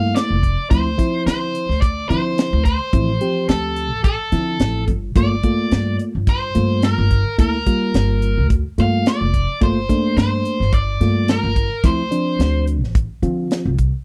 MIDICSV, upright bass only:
0, 0, Header, 1, 2, 480
1, 0, Start_track
1, 0, Key_signature, -1, "minor"
1, 0, Tempo, 556586
1, 610, Time_signature, 4, 2, 24, 8
1, 12113, End_track
2, 0, Start_track
2, 0, Title_t, "Upright bass"
2, 0, Program_c, 0, 32
2, 0, Note_on_c, 0, 43, 78
2, 91, Note_off_c, 0, 43, 0
2, 262, Note_on_c, 0, 29, 77
2, 462, Note_off_c, 0, 29, 0
2, 611, Note_on_c, 0, 38, 89
2, 812, Note_off_c, 0, 38, 0
2, 1090, Note_on_c, 0, 50, 80
2, 1291, Note_off_c, 0, 50, 0
2, 1457, Note_on_c, 0, 38, 74
2, 1751, Note_off_c, 0, 38, 0
2, 1811, Note_on_c, 0, 50, 79
2, 2120, Note_off_c, 0, 50, 0
2, 2181, Note_on_c, 0, 38, 96
2, 2382, Note_off_c, 0, 38, 0
2, 2529, Note_on_c, 0, 33, 86
2, 2730, Note_off_c, 0, 33, 0
2, 3005, Note_on_c, 0, 38, 82
2, 3378, Note_off_c, 0, 38, 0
2, 3378, Note_on_c, 0, 33, 75
2, 3580, Note_off_c, 0, 33, 0
2, 3727, Note_on_c, 0, 50, 89
2, 3930, Note_off_c, 0, 50, 0
2, 3966, Note_on_c, 0, 33, 81
2, 4184, Note_off_c, 0, 33, 0
2, 4205, Note_on_c, 0, 31, 71
2, 4423, Note_off_c, 0, 31, 0
2, 4447, Note_on_c, 0, 31, 83
2, 4649, Note_off_c, 0, 31, 0
2, 4930, Note_on_c, 0, 43, 81
2, 5131, Note_off_c, 0, 43, 0
2, 5303, Note_on_c, 0, 31, 70
2, 5595, Note_off_c, 0, 31, 0
2, 5653, Note_on_c, 0, 43, 77
2, 5962, Note_off_c, 0, 43, 0
2, 6020, Note_on_c, 0, 31, 91
2, 6222, Note_off_c, 0, 31, 0
2, 6369, Note_on_c, 0, 38, 76
2, 6571, Note_off_c, 0, 38, 0
2, 6851, Note_on_c, 0, 31, 79
2, 7223, Note_on_c, 0, 38, 75
2, 7235, Note_off_c, 0, 31, 0
2, 7423, Note_off_c, 0, 38, 0
2, 7573, Note_on_c, 0, 43, 85
2, 7774, Note_off_c, 0, 43, 0
2, 7942, Note_on_c, 0, 29, 79
2, 8143, Note_off_c, 0, 29, 0
2, 8290, Note_on_c, 0, 31, 74
2, 8492, Note_off_c, 0, 31, 0
2, 8768, Note_on_c, 0, 43, 79
2, 8971, Note_off_c, 0, 43, 0
2, 9141, Note_on_c, 0, 31, 75
2, 9435, Note_off_c, 0, 31, 0
2, 9490, Note_on_c, 0, 43, 80
2, 9801, Note_off_c, 0, 43, 0
2, 9860, Note_on_c, 0, 31, 86
2, 10062, Note_off_c, 0, 31, 0
2, 10209, Note_on_c, 0, 38, 86
2, 10412, Note_off_c, 0, 38, 0
2, 10685, Note_on_c, 0, 38, 86
2, 11057, Note_off_c, 0, 38, 0
2, 11057, Note_on_c, 0, 33, 77
2, 11260, Note_off_c, 0, 33, 0
2, 11404, Note_on_c, 0, 50, 83
2, 11609, Note_off_c, 0, 50, 0
2, 11776, Note_on_c, 0, 36, 82
2, 11980, Note_off_c, 0, 36, 0
2, 12113, End_track
0, 0, End_of_file